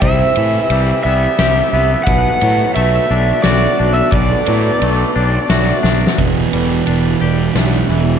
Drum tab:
RD |x--x--x-----x-----|x--x--x-----x-----|x--x--x-----x-----|x--x--x-----x-----|
SD |------------o-----|------------o-----|------------o--o-o|------------o-----|
BD |o-----------------|o-----------------|o-----------------|o-----------------|